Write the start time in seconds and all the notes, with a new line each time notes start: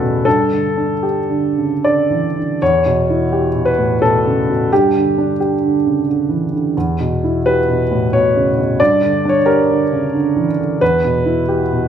Already playing: E2 A2 C#3 E4 G4 A4 B4 C#5
0.00 B2
0.25 G2 A4
0.51 D3
0.77 D4
1.03 G4
1.29 D3
1.58 C#3
1.84 D3 D5
2.10 E3
2.38 D3
2.62 E2 C#5
2.86 B2
3.10 E4
3.32 G4
3.56 B2
3.65 B4
3.79 A2
4.02 B2 A4
4.27 C#3
4.49 B2
4.73 G2 G4
4.96 D3
5.18 D4
5.40 G4
5.64 D3
5.86 C#3
6.08 D3
6.29 E3
6.53 D3
6.77 E2
7.00 B2
7.24 E4
7.46 G4 B4
7.69 B2
7.91 A2
8.13 B2 C#5
8.36 C#3
8.58 B2
8.80 G2 D5
9.03 D3
9.25 D4
9.29 C#5
9.46 G4 A#4
9.69 D3
9.93 C#3
10.14 D3
10.36 E3
10.59 D3
10.81 E2 B4
11.05 B2
11.25 E4
11.49 G4
11.73 B2